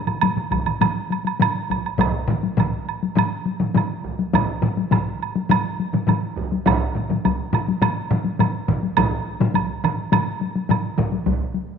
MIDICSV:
0, 0, Header, 1, 3, 480
1, 0, Start_track
1, 0, Tempo, 586510
1, 1625, Time_signature, 4, 2, 24, 8
1, 4978, Tempo, 576923
1, 9722, End_track
2, 0, Start_track
2, 0, Title_t, "Taiko and cinematic ensemble drums"
2, 59, Note_on_c, 9, 45, 58
2, 60, Note_on_c, 9, 47, 60
2, 65, Note_on_c, 9, 48, 18
2, 141, Note_off_c, 9, 45, 0
2, 141, Note_off_c, 9, 47, 0
2, 147, Note_off_c, 9, 48, 0
2, 179, Note_on_c, 9, 47, 61
2, 183, Note_on_c, 9, 45, 65
2, 187, Note_on_c, 9, 48, 62
2, 261, Note_off_c, 9, 47, 0
2, 265, Note_off_c, 9, 45, 0
2, 268, Note_off_c, 9, 48, 0
2, 298, Note_on_c, 9, 45, 56
2, 303, Note_on_c, 9, 47, 66
2, 304, Note_on_c, 9, 48, 19
2, 380, Note_off_c, 9, 45, 0
2, 385, Note_off_c, 9, 47, 0
2, 386, Note_off_c, 9, 48, 0
2, 417, Note_on_c, 9, 45, 64
2, 424, Note_on_c, 9, 41, 72
2, 426, Note_on_c, 9, 48, 45
2, 427, Note_on_c, 9, 47, 56
2, 499, Note_off_c, 9, 45, 0
2, 506, Note_off_c, 9, 41, 0
2, 507, Note_off_c, 9, 48, 0
2, 509, Note_off_c, 9, 47, 0
2, 539, Note_on_c, 9, 45, 63
2, 543, Note_on_c, 9, 48, 19
2, 544, Note_on_c, 9, 47, 60
2, 621, Note_off_c, 9, 45, 0
2, 625, Note_off_c, 9, 48, 0
2, 626, Note_off_c, 9, 47, 0
2, 663, Note_on_c, 9, 45, 87
2, 663, Note_on_c, 9, 48, 67
2, 667, Note_on_c, 9, 47, 95
2, 745, Note_off_c, 9, 45, 0
2, 745, Note_off_c, 9, 48, 0
2, 749, Note_off_c, 9, 47, 0
2, 789, Note_on_c, 9, 48, 18
2, 871, Note_off_c, 9, 48, 0
2, 904, Note_on_c, 9, 48, 45
2, 985, Note_off_c, 9, 48, 0
2, 1020, Note_on_c, 9, 48, 41
2, 1101, Note_off_c, 9, 48, 0
2, 1142, Note_on_c, 9, 48, 61
2, 1145, Note_on_c, 9, 45, 85
2, 1151, Note_on_c, 9, 47, 77
2, 1224, Note_off_c, 9, 48, 0
2, 1227, Note_off_c, 9, 45, 0
2, 1233, Note_off_c, 9, 47, 0
2, 1268, Note_on_c, 9, 48, 20
2, 1350, Note_off_c, 9, 48, 0
2, 1390, Note_on_c, 9, 41, 63
2, 1392, Note_on_c, 9, 48, 47
2, 1472, Note_off_c, 9, 41, 0
2, 1474, Note_off_c, 9, 48, 0
2, 1511, Note_on_c, 9, 48, 19
2, 1593, Note_off_c, 9, 48, 0
2, 1621, Note_on_c, 9, 45, 94
2, 1628, Note_on_c, 9, 48, 68
2, 1629, Note_on_c, 9, 41, 96
2, 1632, Note_on_c, 9, 47, 97
2, 1703, Note_off_c, 9, 45, 0
2, 1710, Note_off_c, 9, 41, 0
2, 1710, Note_off_c, 9, 48, 0
2, 1714, Note_off_c, 9, 47, 0
2, 1864, Note_on_c, 9, 45, 99
2, 1876, Note_on_c, 9, 47, 88
2, 1946, Note_off_c, 9, 45, 0
2, 1958, Note_off_c, 9, 47, 0
2, 1989, Note_on_c, 9, 48, 53
2, 2071, Note_off_c, 9, 48, 0
2, 2103, Note_on_c, 9, 45, 102
2, 2107, Note_on_c, 9, 48, 64
2, 2113, Note_on_c, 9, 41, 59
2, 2122, Note_on_c, 9, 47, 89
2, 2185, Note_off_c, 9, 45, 0
2, 2189, Note_off_c, 9, 48, 0
2, 2195, Note_off_c, 9, 41, 0
2, 2204, Note_off_c, 9, 47, 0
2, 2477, Note_on_c, 9, 48, 52
2, 2559, Note_off_c, 9, 48, 0
2, 2582, Note_on_c, 9, 45, 92
2, 2592, Note_on_c, 9, 48, 71
2, 2594, Note_on_c, 9, 47, 105
2, 2663, Note_off_c, 9, 45, 0
2, 2673, Note_off_c, 9, 48, 0
2, 2676, Note_off_c, 9, 47, 0
2, 2828, Note_on_c, 9, 48, 52
2, 2910, Note_off_c, 9, 48, 0
2, 2945, Note_on_c, 9, 48, 56
2, 2948, Note_on_c, 9, 45, 72
2, 2956, Note_on_c, 9, 47, 67
2, 3027, Note_off_c, 9, 48, 0
2, 3030, Note_off_c, 9, 45, 0
2, 3038, Note_off_c, 9, 47, 0
2, 3065, Note_on_c, 9, 48, 69
2, 3067, Note_on_c, 9, 45, 94
2, 3072, Note_on_c, 9, 47, 97
2, 3146, Note_off_c, 9, 48, 0
2, 3148, Note_off_c, 9, 45, 0
2, 3154, Note_off_c, 9, 47, 0
2, 3310, Note_on_c, 9, 41, 63
2, 3392, Note_off_c, 9, 41, 0
2, 3429, Note_on_c, 9, 48, 53
2, 3511, Note_off_c, 9, 48, 0
2, 3547, Note_on_c, 9, 45, 96
2, 3547, Note_on_c, 9, 48, 65
2, 3550, Note_on_c, 9, 47, 92
2, 3552, Note_on_c, 9, 41, 92
2, 3629, Note_off_c, 9, 45, 0
2, 3629, Note_off_c, 9, 48, 0
2, 3632, Note_off_c, 9, 47, 0
2, 3634, Note_off_c, 9, 41, 0
2, 3783, Note_on_c, 9, 45, 93
2, 3787, Note_on_c, 9, 47, 90
2, 3865, Note_off_c, 9, 45, 0
2, 3869, Note_off_c, 9, 47, 0
2, 3906, Note_on_c, 9, 48, 50
2, 3988, Note_off_c, 9, 48, 0
2, 4019, Note_on_c, 9, 48, 66
2, 4021, Note_on_c, 9, 45, 109
2, 4025, Note_on_c, 9, 47, 98
2, 4037, Note_on_c, 9, 41, 59
2, 4100, Note_off_c, 9, 48, 0
2, 4103, Note_off_c, 9, 45, 0
2, 4107, Note_off_c, 9, 47, 0
2, 4119, Note_off_c, 9, 41, 0
2, 4383, Note_on_c, 9, 48, 57
2, 4465, Note_off_c, 9, 48, 0
2, 4495, Note_on_c, 9, 45, 92
2, 4497, Note_on_c, 9, 48, 77
2, 4502, Note_on_c, 9, 47, 106
2, 4577, Note_off_c, 9, 45, 0
2, 4579, Note_off_c, 9, 48, 0
2, 4584, Note_off_c, 9, 47, 0
2, 4744, Note_on_c, 9, 48, 50
2, 4826, Note_off_c, 9, 48, 0
2, 4853, Note_on_c, 9, 45, 70
2, 4859, Note_on_c, 9, 47, 71
2, 4864, Note_on_c, 9, 48, 51
2, 4935, Note_off_c, 9, 45, 0
2, 4941, Note_off_c, 9, 47, 0
2, 4946, Note_off_c, 9, 48, 0
2, 4966, Note_on_c, 9, 45, 89
2, 4979, Note_on_c, 9, 47, 86
2, 4979, Note_on_c, 9, 48, 72
2, 5049, Note_off_c, 9, 45, 0
2, 5062, Note_off_c, 9, 47, 0
2, 5062, Note_off_c, 9, 48, 0
2, 5220, Note_on_c, 9, 41, 77
2, 5303, Note_off_c, 9, 41, 0
2, 5341, Note_on_c, 9, 48, 48
2, 5424, Note_off_c, 9, 48, 0
2, 5455, Note_on_c, 9, 45, 90
2, 5457, Note_on_c, 9, 41, 116
2, 5461, Note_on_c, 9, 48, 69
2, 5462, Note_on_c, 9, 47, 96
2, 5539, Note_off_c, 9, 45, 0
2, 5541, Note_off_c, 9, 41, 0
2, 5544, Note_off_c, 9, 48, 0
2, 5545, Note_off_c, 9, 47, 0
2, 5698, Note_on_c, 9, 45, 68
2, 5704, Note_on_c, 9, 47, 66
2, 5781, Note_off_c, 9, 45, 0
2, 5788, Note_off_c, 9, 47, 0
2, 5819, Note_on_c, 9, 47, 66
2, 5823, Note_on_c, 9, 45, 70
2, 5830, Note_on_c, 9, 48, 52
2, 5903, Note_off_c, 9, 47, 0
2, 5906, Note_off_c, 9, 45, 0
2, 5913, Note_off_c, 9, 48, 0
2, 5946, Note_on_c, 9, 41, 72
2, 5950, Note_on_c, 9, 48, 69
2, 6030, Note_off_c, 9, 41, 0
2, 6033, Note_off_c, 9, 48, 0
2, 6181, Note_on_c, 9, 45, 98
2, 6181, Note_on_c, 9, 47, 90
2, 6264, Note_off_c, 9, 45, 0
2, 6264, Note_off_c, 9, 47, 0
2, 6311, Note_on_c, 9, 48, 58
2, 6394, Note_off_c, 9, 48, 0
2, 6421, Note_on_c, 9, 45, 99
2, 6425, Note_on_c, 9, 47, 116
2, 6425, Note_on_c, 9, 48, 74
2, 6504, Note_off_c, 9, 45, 0
2, 6508, Note_off_c, 9, 47, 0
2, 6508, Note_off_c, 9, 48, 0
2, 6663, Note_on_c, 9, 45, 97
2, 6665, Note_on_c, 9, 48, 48
2, 6667, Note_on_c, 9, 47, 97
2, 6746, Note_off_c, 9, 45, 0
2, 6748, Note_off_c, 9, 48, 0
2, 6750, Note_off_c, 9, 47, 0
2, 6777, Note_on_c, 9, 48, 53
2, 6860, Note_off_c, 9, 48, 0
2, 6900, Note_on_c, 9, 48, 71
2, 6901, Note_on_c, 9, 47, 91
2, 6907, Note_on_c, 9, 45, 95
2, 6984, Note_off_c, 9, 47, 0
2, 6984, Note_off_c, 9, 48, 0
2, 6990, Note_off_c, 9, 45, 0
2, 7142, Note_on_c, 9, 45, 93
2, 7142, Note_on_c, 9, 47, 97
2, 7145, Note_on_c, 9, 41, 66
2, 7225, Note_off_c, 9, 45, 0
2, 7225, Note_off_c, 9, 47, 0
2, 7228, Note_off_c, 9, 41, 0
2, 7264, Note_on_c, 9, 48, 49
2, 7347, Note_off_c, 9, 48, 0
2, 7382, Note_on_c, 9, 48, 65
2, 7383, Note_on_c, 9, 41, 95
2, 7384, Note_on_c, 9, 47, 96
2, 7386, Note_on_c, 9, 45, 100
2, 7466, Note_off_c, 9, 41, 0
2, 7466, Note_off_c, 9, 48, 0
2, 7467, Note_off_c, 9, 47, 0
2, 7469, Note_off_c, 9, 45, 0
2, 7741, Note_on_c, 9, 48, 54
2, 7743, Note_on_c, 9, 45, 100
2, 7746, Note_on_c, 9, 47, 95
2, 7824, Note_off_c, 9, 48, 0
2, 7827, Note_off_c, 9, 45, 0
2, 7829, Note_off_c, 9, 47, 0
2, 7857, Note_on_c, 9, 48, 68
2, 7869, Note_on_c, 9, 41, 61
2, 7940, Note_off_c, 9, 48, 0
2, 7952, Note_off_c, 9, 41, 0
2, 8103, Note_on_c, 9, 47, 103
2, 8104, Note_on_c, 9, 45, 89
2, 8187, Note_off_c, 9, 45, 0
2, 8187, Note_off_c, 9, 47, 0
2, 8338, Note_on_c, 9, 48, 78
2, 8342, Note_on_c, 9, 45, 97
2, 8342, Note_on_c, 9, 47, 100
2, 8421, Note_off_c, 9, 48, 0
2, 8425, Note_off_c, 9, 45, 0
2, 8425, Note_off_c, 9, 47, 0
2, 8581, Note_on_c, 9, 48, 48
2, 8664, Note_off_c, 9, 48, 0
2, 8699, Note_on_c, 9, 48, 53
2, 8783, Note_off_c, 9, 48, 0
2, 8813, Note_on_c, 9, 48, 69
2, 8814, Note_on_c, 9, 47, 81
2, 8822, Note_on_c, 9, 45, 94
2, 8896, Note_off_c, 9, 48, 0
2, 8898, Note_off_c, 9, 47, 0
2, 8905, Note_off_c, 9, 45, 0
2, 9051, Note_on_c, 9, 47, 88
2, 9053, Note_on_c, 9, 45, 96
2, 9059, Note_on_c, 9, 41, 73
2, 9134, Note_off_c, 9, 47, 0
2, 9137, Note_off_c, 9, 45, 0
2, 9142, Note_off_c, 9, 41, 0
2, 9171, Note_on_c, 9, 48, 49
2, 9255, Note_off_c, 9, 48, 0
2, 9286, Note_on_c, 9, 41, 80
2, 9288, Note_on_c, 9, 48, 58
2, 9370, Note_off_c, 9, 41, 0
2, 9371, Note_off_c, 9, 48, 0
2, 9408, Note_on_c, 9, 48, 18
2, 9492, Note_off_c, 9, 48, 0
2, 9522, Note_on_c, 9, 48, 46
2, 9605, Note_off_c, 9, 48, 0
2, 9722, End_track
3, 0, Start_track
3, 0, Title_t, "Drums"
3, 59, Note_on_c, 9, 76, 36
3, 141, Note_off_c, 9, 76, 0
3, 176, Note_on_c, 9, 76, 53
3, 258, Note_off_c, 9, 76, 0
3, 424, Note_on_c, 9, 76, 42
3, 506, Note_off_c, 9, 76, 0
3, 543, Note_on_c, 9, 76, 41
3, 625, Note_off_c, 9, 76, 0
3, 667, Note_on_c, 9, 76, 52
3, 749, Note_off_c, 9, 76, 0
3, 919, Note_on_c, 9, 76, 41
3, 1001, Note_off_c, 9, 76, 0
3, 1040, Note_on_c, 9, 76, 43
3, 1122, Note_off_c, 9, 76, 0
3, 1163, Note_on_c, 9, 76, 59
3, 1245, Note_off_c, 9, 76, 0
3, 1403, Note_on_c, 9, 76, 41
3, 1484, Note_off_c, 9, 76, 0
3, 1523, Note_on_c, 9, 76, 37
3, 1605, Note_off_c, 9, 76, 0
3, 1643, Note_on_c, 9, 76, 46
3, 1725, Note_off_c, 9, 76, 0
3, 2126, Note_on_c, 9, 76, 40
3, 2208, Note_off_c, 9, 76, 0
3, 2362, Note_on_c, 9, 76, 35
3, 2444, Note_off_c, 9, 76, 0
3, 2607, Note_on_c, 9, 76, 52
3, 2688, Note_off_c, 9, 76, 0
3, 3089, Note_on_c, 9, 76, 41
3, 3171, Note_off_c, 9, 76, 0
3, 3560, Note_on_c, 9, 76, 55
3, 3642, Note_off_c, 9, 76, 0
3, 4030, Note_on_c, 9, 76, 43
3, 4112, Note_off_c, 9, 76, 0
3, 4276, Note_on_c, 9, 76, 37
3, 4358, Note_off_c, 9, 76, 0
3, 4512, Note_on_c, 9, 76, 53
3, 4594, Note_off_c, 9, 76, 0
3, 4982, Note_on_c, 9, 76, 42
3, 5065, Note_off_c, 9, 76, 0
3, 5469, Note_on_c, 9, 76, 49
3, 5552, Note_off_c, 9, 76, 0
3, 5950, Note_on_c, 9, 76, 45
3, 6033, Note_off_c, 9, 76, 0
3, 6195, Note_on_c, 9, 76, 39
3, 6279, Note_off_c, 9, 76, 0
3, 6427, Note_on_c, 9, 76, 59
3, 6511, Note_off_c, 9, 76, 0
3, 6909, Note_on_c, 9, 76, 50
3, 6992, Note_off_c, 9, 76, 0
3, 7379, Note_on_c, 9, 76, 62
3, 7462, Note_off_c, 9, 76, 0
3, 7865, Note_on_c, 9, 76, 46
3, 7948, Note_off_c, 9, 76, 0
3, 8108, Note_on_c, 9, 76, 46
3, 8192, Note_off_c, 9, 76, 0
3, 8344, Note_on_c, 9, 76, 62
3, 8427, Note_off_c, 9, 76, 0
3, 8830, Note_on_c, 9, 76, 54
3, 8913, Note_off_c, 9, 76, 0
3, 9722, End_track
0, 0, End_of_file